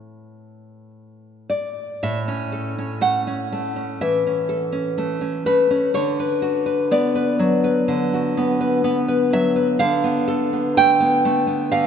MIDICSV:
0, 0, Header, 1, 2, 480
1, 0, Start_track
1, 0, Key_signature, 3, "major"
1, 0, Tempo, 1096892
1, 881, Time_signature, 4, 2, 24, 8
1, 881, Tempo, 995025
1, 1841, Tempo, 966184
1, 5749, End_track
2, 0, Start_track
2, 0, Title_t, "Nylon-string guitar"
2, 0, Program_c, 0, 24
2, 0, Note_on_c, 0, 45, 56
2, 0, Note_on_c, 0, 57, 42
2, 0, Note_on_c, 0, 60, 41
2, 0, Note_on_c, 0, 69, 62
2, 395, Note_off_c, 0, 69, 0
2, 654, Note_on_c, 0, 74, 68
2, 854, Note_off_c, 0, 45, 0
2, 859, Note_off_c, 0, 57, 0
2, 862, Note_off_c, 0, 60, 0
2, 873, Note_off_c, 0, 74, 0
2, 888, Note_on_c, 0, 45, 74
2, 889, Note_on_c, 0, 76, 76
2, 1009, Note_on_c, 0, 61, 58
2, 1126, Note_on_c, 0, 69, 62
2, 1247, Note_off_c, 0, 61, 0
2, 1253, Note_on_c, 0, 61, 54
2, 1347, Note_off_c, 0, 76, 0
2, 1362, Note_on_c, 0, 57, 59
2, 1365, Note_on_c, 0, 78, 94
2, 1482, Note_off_c, 0, 61, 0
2, 1488, Note_on_c, 0, 61, 63
2, 1604, Note_off_c, 0, 57, 0
2, 1610, Note_on_c, 0, 57, 55
2, 1718, Note_off_c, 0, 61, 0
2, 1724, Note_on_c, 0, 61, 50
2, 1823, Note_off_c, 0, 78, 0
2, 1826, Note_off_c, 0, 45, 0
2, 1844, Note_off_c, 0, 69, 0
2, 1845, Note_on_c, 0, 52, 60
2, 1845, Note_on_c, 0, 76, 98
2, 1966, Note_off_c, 0, 61, 0
2, 1972, Note_on_c, 0, 61, 58
2, 2082, Note_on_c, 0, 69, 61
2, 2193, Note_off_c, 0, 61, 0
2, 2199, Note_on_c, 0, 61, 59
2, 2319, Note_off_c, 0, 57, 0
2, 2325, Note_on_c, 0, 57, 63
2, 2434, Note_off_c, 0, 61, 0
2, 2440, Note_on_c, 0, 61, 55
2, 2542, Note_off_c, 0, 76, 0
2, 2558, Note_off_c, 0, 57, 0
2, 2563, Note_off_c, 0, 52, 0
2, 2564, Note_on_c, 0, 57, 58
2, 2566, Note_on_c, 0, 71, 80
2, 2680, Note_off_c, 0, 61, 0
2, 2686, Note_on_c, 0, 61, 59
2, 2797, Note_off_c, 0, 71, 0
2, 2801, Note_off_c, 0, 57, 0
2, 2803, Note_on_c, 0, 50, 76
2, 2804, Note_off_c, 0, 69, 0
2, 2806, Note_off_c, 0, 61, 0
2, 2806, Note_on_c, 0, 73, 86
2, 2930, Note_on_c, 0, 71, 66
2, 3041, Note_on_c, 0, 66, 70
2, 3154, Note_off_c, 0, 71, 0
2, 3160, Note_on_c, 0, 71, 60
2, 3269, Note_off_c, 0, 73, 0
2, 3286, Note_on_c, 0, 59, 65
2, 3289, Note_on_c, 0, 74, 93
2, 3400, Note_off_c, 0, 71, 0
2, 3406, Note_on_c, 0, 71, 73
2, 3525, Note_on_c, 0, 54, 70
2, 3641, Note_off_c, 0, 71, 0
2, 3647, Note_on_c, 0, 71, 65
2, 3745, Note_off_c, 0, 50, 0
2, 3763, Note_off_c, 0, 66, 0
2, 3767, Note_on_c, 0, 50, 72
2, 3895, Note_on_c, 0, 66, 71
2, 4004, Note_off_c, 0, 59, 0
2, 4012, Note_on_c, 0, 59, 66
2, 4122, Note_off_c, 0, 71, 0
2, 4128, Note_on_c, 0, 71, 71
2, 4224, Note_off_c, 0, 74, 0
2, 4238, Note_off_c, 0, 59, 0
2, 4242, Note_off_c, 0, 54, 0
2, 4244, Note_on_c, 0, 59, 73
2, 4359, Note_off_c, 0, 71, 0
2, 4365, Note_on_c, 0, 71, 73
2, 4486, Note_on_c, 0, 54, 67
2, 4488, Note_on_c, 0, 76, 108
2, 4594, Note_off_c, 0, 71, 0
2, 4600, Note_on_c, 0, 71, 73
2, 4602, Note_off_c, 0, 66, 0
2, 4697, Note_off_c, 0, 50, 0
2, 4710, Note_off_c, 0, 76, 0
2, 4716, Note_off_c, 0, 59, 0
2, 4717, Note_off_c, 0, 71, 0
2, 4717, Note_on_c, 0, 77, 103
2, 4720, Note_off_c, 0, 54, 0
2, 4720, Note_on_c, 0, 50, 98
2, 4840, Note_on_c, 0, 59, 71
2, 4958, Note_on_c, 0, 69, 79
2, 5077, Note_off_c, 0, 59, 0
2, 5083, Note_on_c, 0, 59, 65
2, 5178, Note_off_c, 0, 77, 0
2, 5203, Note_on_c, 0, 57, 70
2, 5204, Note_on_c, 0, 79, 118
2, 5312, Note_off_c, 0, 59, 0
2, 5318, Note_on_c, 0, 59, 76
2, 5435, Note_off_c, 0, 57, 0
2, 5441, Note_on_c, 0, 57, 73
2, 5544, Note_off_c, 0, 59, 0
2, 5550, Note_on_c, 0, 59, 63
2, 5660, Note_off_c, 0, 50, 0
2, 5662, Note_off_c, 0, 79, 0
2, 5672, Note_on_c, 0, 77, 112
2, 5676, Note_on_c, 0, 50, 82
2, 5679, Note_off_c, 0, 69, 0
2, 5749, Note_off_c, 0, 50, 0
2, 5749, Note_off_c, 0, 57, 0
2, 5749, Note_off_c, 0, 59, 0
2, 5749, Note_off_c, 0, 77, 0
2, 5749, End_track
0, 0, End_of_file